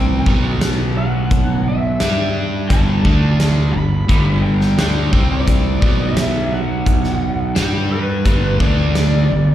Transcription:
0.00 0.22 C2 medium
0.00 0.25 C3 medium
0.00 0.26 G3 medium
0.00 0.26 C4 medium
0.00 0.29 G5 medium
0.26 1.96 B1 medium
0.26 1.99 B2 medium
0.26 2.00 F#3 medium
0.26 2.00 B3 medium
0.26 kick medium
0.61 snare loud
0.61 closed hi-hat medium
0.98 1.68 F#5 medium
1.31 kick medium
1.31 closed hi-hat medium
1.69 2.33 E5 medium
2.00 2.66 G2 medium
2.00 2.69 G3 medium
2.00 2.69 D4 medium
2.00 2.70 G4 medium
2.00 snare medium
2.00 closed hi-hat medium
2.69 3.03 G1 medium
2.69 3.04 G2 medium
2.69 3.03 D3 medium
2.69 3.04 G3 medium
2.69 3.35 A5 medium
2.69 kick loud
2.69 closed hi-hat medium
3.04 3.70 D2 medium
3.04 3.73 D3 medium
3.04 3.73 A3 medium
3.04 3.73 D4 medium
3.04 kick medium
3.40 snare medium
3.40 closed hi-hat soft
3.73 4.07 G1 medium
3.73 4.02 G2 medium
3.73 4.02 D3 medium
3.73 4.39 B5 medium
4.08 4.74 G1 medium
4.08 4.77 G2 medium
4.08 4.76 D3 medium
4.08 4.77 G3 loud
4.08 kick medium
4.08 closed hi-hat soft
4.42 4.75 G5 medium
4.61 snare soft
4.77 5.10 D2 medium
4.77 5.12 D3 medium
4.77 5.12 A3 medium
4.77 5.12 D4 medium
4.77 5.32 G5 medium
4.77 snare loud
4.77 closed hi-hat medium
5.13 5.79 C2 medium
5.13 5.81 C3 medium
5.13 5.81 G3 medium
5.13 5.82 C4 medium
5.13 kick medium
5.32 5.97 D5 medium
5.47 kick medium
5.47 closed hi-hat medium
5.81 7.52 B1 medium
5.81 7.55 B2 medium
5.81 7.55 F#3 medium
5.81 7.55 B3 medium
5.81 kick loud
6.01 6.52 E5 medium
6.17 snare loud
6.17 closed hi-hat medium
6.53 7.96 F#5 medium
6.86 kick medium
6.86 closed hi-hat medium
7.04 snare soft
7.55 8.22 G2 medium
7.55 8.24 G3 medium
7.55 8.25 D4 medium
7.55 8.25 G4 medium
7.55 snare loud
7.55 closed hi-hat medium
7.92 8.63 B4 medium
8.25 8.58 G1 medium
8.25 8.60 G2 loud
8.25 8.59 D3 loud
8.25 8.60 G3 loud
8.25 kick medium
8.25 closed hi-hat medium
8.60 9.26 D2 medium
8.60 9.29 D3 medium
8.60 9.29 A3 medium
8.60 9.30 D4 medium
8.60 9.55 D5 medium
8.60 kick loud
8.95 snare medium
8.95 closed hi-hat soft
9.30 9.55 G1 medium
9.30 9.55 G2 medium
9.30 9.55 D3 medium

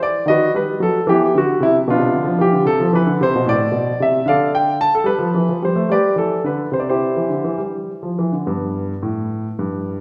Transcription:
0.03 0.24 D5 medium
0.26 0.45 D#3 medium
0.26 0.53 F#4 medium
0.26 0.50 D#5 medium
0.30 0.53 B4 medium
0.54 0.73 G3 medium
0.54 0.78 B4 medium
0.80 0.99 F#3 medium
0.80 1.04 A4 medium
1.07 1.26 E3 medium
1.07 1.33 B3 medium
1.07 1.33 E4 medium
1.07 1.35 G4 medium
1.35 1.53 D3 medium
1.35 1.62 F#4 medium
1.60 1.79 C3 medium
1.60 1.75 E4 medium
1.88 2.00 B2 medium
1.88 2.38 B3 medium
1.88 2.38 D4 medium
1.88 2.41 F4 medium
1.99 2.12 C3 medium
2.13 2.25 D3 medium
2.24 2.38 F3 medium
2.39 2.52 E3 medium
2.39 2.63 G4 medium
2.52 2.65 D3 medium
2.65 2.78 C3 medium
2.65 2.89 A4 medium
2.80 2.92 F3 medium
2.93 3.05 E3 medium
2.93 3.20 B4 medium
3.06 3.19 D3 medium
3.21 3.32 C3 medium
3.21 3.44 C5 medium
3.35 3.47 B2 medium
3.46 3.65 A2 medium
3.46 4.00 D5 medium
3.72 3.91 B2 medium
4.00 4.19 C3 medium
4.00 4.27 E5 medium
4.26 4.84 D3 medium
4.26 4.52 A4 medium
4.26 4.52 D5 medium
4.26 4.49 F5 medium
4.55 4.76 G5 medium
4.81 4.93 A5 medium
4.95 5.07 A4 medium
5.04 5.18 G3 medium
5.04 5.61 B4 medium
5.19 5.32 F3 medium
5.35 5.47 E3 medium
5.49 5.61 F3 medium
5.62 5.75 G3 medium
5.62 5.90 C5 medium
5.76 5.88 A3 medium
5.89 6.08 G3 medium
5.89 6.16 G4 medium
5.89 6.16 B4 medium
5.89 6.14 D5 medium
6.16 6.36 E3 medium
6.16 6.41 A4 medium
6.44 6.65 D3 medium
6.44 6.69 B4 medium
6.72 7.03 C3 medium
6.72 6.80 C5 medium
6.80 6.87 D5 medium
6.89 7.57 E4 medium
6.89 7.57 G4 medium
6.89 7.61 C5 medium
7.17 7.30 E3 soft
7.30 7.44 D3 medium
7.45 7.59 E3 medium
7.58 7.90 G3 medium
8.03 8.18 F3 soft
8.19 8.33 E3 medium
8.32 8.47 D3 soft
8.47 8.92 G2 medium
8.47 10.01 B3 soft
9.03 9.46 A2 medium
9.59 10.01 G2 medium

